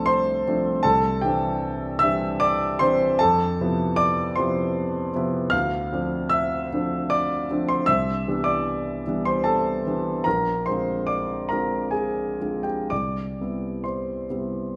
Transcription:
0.00 0.85 C2 soft
0.00 0.48 F3 soft
0.00 0.48 A3 soft
0.00 0.47 C4 soft
0.00 0.48 D4 soft
0.00 0.84 A4 medium
0.00 0.07 C5 medium
0.00 0.87 D5 medium
0.00 0.83 A5 medium
0.00 0.06 C6 medium
0.00 0.87 D6 medium
0.06 0.80 C5 medium
0.06 0.83 C6 medium
0.47 0.81 F3 soft
0.47 0.81 A3 soft
0.47 0.81 C4 soft
0.47 0.82 D4 soft
0.83 1.22 C2 medium
0.83 1.20 A4 medium
0.83 1.22 A5 medium
1.21 1.97 E3 soft
1.21 1.97 G3 soft
1.21 1.98 C4 soft
1.21 1.98 D4 soft
1.21 1.96 G4 medium
1.21 2.00 G5 medium
1.99 2.76 E3 soft
1.99 2.76 G3 soft
1.99 2.76 C4 soft
1.99 2.37 E5 medium
1.99 2.39 E6 loud
2.03 2.76 D4 soft
2.40 2.77 D5 medium
2.40 2.79 D6 loud
2.79 3.16 E3 soft
2.79 3.16 G3 soft
2.79 3.16 C4 soft
2.79 3.16 D4 soft
2.79 3.17 C5 medium
2.79 3.19 C6 medium
3.19 3.58 F2 medium
3.19 3.93 A4 medium
3.19 3.96 A5 loud
3.60 4.32 C3 soft
3.60 4.33 F3 soft
3.60 4.33 B3 soft
3.60 4.33 E4 soft
3.96 4.33 D5 medium
3.96 4.35 D6 loud
4.36 5.11 C3 soft
4.36 5.11 F3 soft
4.36 5.11 B3 soft
4.36 5.11 E4 soft
4.36 5.10 C5 medium
4.36 5.14 C6 medium
5.15 5.49 C3 soft
5.15 5.49 F3 soft
5.15 5.50 B3 soft
5.15 5.50 E4 soft
5.50 5.90 D2 medium
5.50 6.27 F5 medium
5.50 6.30 F6 loud
5.93 6.67 D3 soft
5.93 6.67 F3 soft
5.93 6.68 C4 soft
5.93 6.68 D4 soft
6.29 7.06 E5 medium
6.29 7.09 E6 medium
6.72 7.45 D3 soft
6.72 7.46 F3 soft
6.72 7.46 C4 soft
6.72 7.46 D4 soft
7.10 7.64 D5 medium
7.10 7.68 D6 medium
7.51 7.85 D3 soft
7.51 7.85 F3 soft
7.51 7.85 C4 soft
7.51 7.85 D4 soft
7.69 7.87 C5 medium
7.69 7.88 C6 medium
7.86 8.26 C2 soft
7.86 8.42 E5 medium
7.86 8.46 E6 medium
8.27 9.02 E3 soft
8.27 9.02 G3 soft
8.27 9.03 B3 soft
8.27 9.03 D4 soft
8.44 9.21 D5 medium
8.44 9.24 D6 medium
9.07 9.82 E3 soft
9.07 9.82 G3 soft
9.07 9.82 B3 soft
9.07 9.82 D4 soft
9.25 9.44 C5 medium
9.25 9.45 C6 medium
9.44 10.21 A4 medium
9.44 10.25 A5 medium
9.86 10.22 E3 soft
9.86 10.22 G3 soft
9.86 10.22 B3 soft
9.86 10.23 D4 soft
10.24 10.66 A#1 soft
10.24 10.64 A#4 medium
10.24 10.66 A#5 medium
10.66 11.48 D3 soft
10.66 11.48 G#3 soft
10.66 11.48 C4 soft
10.66 11.48 F4 soft
10.66 11.06 C5 medium
10.66 11.09 C6 medium
11.07 11.48 D5 medium
11.07 11.50 D6 medium
11.49 12.37 D3 soft
11.49 12.37 G#3 soft
11.49 12.37 C4 soft
11.49 12.37 F4 soft
11.49 11.91 A#4 soft
11.49 11.93 A#5 medium
11.91 12.61 G#4 soft
11.91 12.64 G#5 medium
12.40 12.86 D3 soft
12.40 12.87 G#3 soft
12.40 12.87 C4 soft
12.40 12.87 F4 soft
12.63 12.88 G4 soft
12.63 12.89 G5 medium
12.90 13.38 C2 soft
12.90 13.81 D5 soft
12.90 13.84 D6 medium
13.41 14.26 C3 soft
13.41 14.26 G3 soft
13.41 14.26 B3 soft
13.41 14.26 E4 soft
13.84 14.76 C5 soft
13.84 14.76 C6 soft
14.30 14.76 C3 soft
14.30 14.76 G3 soft
14.30 14.76 B3 soft
14.30 14.76 E4 soft

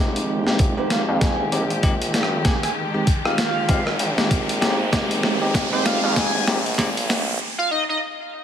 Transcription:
0.00 0.58 F1 medium
0.00 7.36 D#3 medium
0.00 0.42 G#3 medium
0.00 7.36 G#3 medium
0.00 0.42 C4 medium
0.00 0.42 D#4 medium
0.00 0.42 G4 medium
0.00 7.36 G4 medium
0.00 riser medium
0.16 closed hi-hat medium
0.47 0.73 G#3 medium
0.47 0.73 C4 medium
0.47 0.73 D#4 medium
0.47 0.73 G4 medium
0.47 snare soft
0.59 1.06 F1 medium
0.59 kick medium
0.59 closed hi-hat medium
0.77 1.49 G#3 medium
0.77 1.49 C4 medium
0.77 1.49 D#4 medium
0.77 1.49 G4 medium
0.77 0.88 C5 medium
0.90 1.02 F5 medium
0.90 snare soft
0.90 closed hi-hat medium
1.09 1.37 F2 medium
1.09 1.17 F5 medium
1.21 1.49 G#5 medium
1.21 kick medium
1.21 snare soft
1.21 closed hi-hat medium
1.40 1.50 F1 medium
1.52 2.43 A#1 medium
1.52 1.62 G#3 medium
1.52 1.62 C4 medium
1.52 1.62 D#4 medium
1.52 1.62 G4 medium
1.52 closed hi-hat medium
1.70 closed hi-hat soft
1.83 1.94 G#3 medium
1.83 1.93 C4 medium
1.83 1.93 D#4 medium
1.83 1.93 G4 loud
1.83 kick medium
1.83 closed hi-hat medium
2.02 closed hi-hat medium
2.14 snare medium
2.14 closed hi-hat medium
2.23 cross-stick soft
2.45 2.55 G#3 medium
2.45 2.55 C4 medium
2.45 2.55 D#4 medium
2.45 2.55 G4 medium
2.45 2.57 G#5 medium
2.45 kick medium
2.45 snare medium
2.45 closed hi-hat medium
2.63 2.72 G#5 medium
2.63 cross-stick soft
2.63 closed hi-hat medium
2.94 3.05 G#3 medium
2.94 3.06 C4 medium
2.94 3.06 D#4 medium
2.94 3.06 G4 medium
3.07 kick loud
3.07 closed hi-hat medium
3.25 3.37 G#3 medium
3.25 3.36 C4 medium
3.25 3.36 D#4 medium
3.25 3.36 G4 medium
3.25 3.35 F5 medium
3.25 cross-stick medium
3.38 3.87 F5 medium
3.38 snare medium
3.38 closed hi-hat medium
3.69 3.98 G#1 medium
3.69 3.79 G#3 medium
3.69 3.79 C4 medium
3.69 3.79 D#4 medium
3.69 3.79 G4 medium
3.69 kick medium
3.69 closed hi-hat medium
3.87 cross-stick soft
3.99 4.64 A#1 medium
3.99 closed hi-hat medium
4.18 4.59 G#3 medium
4.18 4.58 C4 medium
4.18 4.59 D#4 medium
4.18 4.58 G4 medium
4.18 snare medium
4.18 closed hi-hat soft
4.31 kick loud
4.31 closed hi-hat medium
4.49 closed hi-hat medium
4.61 4.91 A1 medium
4.61 4.78 G#3 medium
4.61 4.78 C4 medium
4.61 4.78 D#4 medium
4.61 4.78 G4 medium
4.61 snare medium
4.61 closed hi-hat medium
4.92 5.52 F1 medium
4.92 5.37 G#3 medium
4.92 5.37 C4 medium
4.92 5.37 D#4 medium
4.92 5.37 G4 medium
4.92 kick loud
4.92 snare medium
4.92 closed hi-hat medium
5.11 closed hi-hat medium
5.23 snare medium
5.42 5.68 G#3 medium
5.42 5.68 C4 medium
5.42 5.68 D#4 medium
5.42 5.68 G4 medium
5.54 6.01 F1 medium
5.54 kick loud
5.54 snare medium
5.54 closed hi-hat medium
5.72 6.44 G#3 medium
5.72 6.44 C4 medium
5.72 6.44 D#4 medium
5.72 6.44 G4 medium
5.72 5.83 C5 medium
5.85 5.97 F5 medium
5.85 snare medium
5.85 closed hi-hat medium
6.04 6.32 F2 medium
6.04 6.12 F5 medium
6.16 6.44 G#5 medium
6.16 kick medium
6.16 snare medium
6.16 closed hi-hat medium
6.35 6.45 F1 medium
6.47 7.38 A#1 loud
6.47 6.57 G#3 medium
6.47 6.57 C4 medium
6.47 6.57 D#4 medium
6.47 6.57 G4 medium
6.47 snare medium
6.47 closed hi-hat medium
6.66 closed hi-hat soft
6.74 6.88 G#3 loud
6.74 6.88 D#4 medium
6.74 6.88 G4 loud
6.74 kick loud
6.74 closed hi-hat soft
6.78 6.88 C4 medium
6.78 snare medium
6.78 closed hi-hat medium
6.97 closed hi-hat medium
7.10 snare medium
7.10 closed hi-hat medium
7.58 7.68 F5 loud
7.71 7.83 D#5 medium
7.89 7.97 D#5 medium

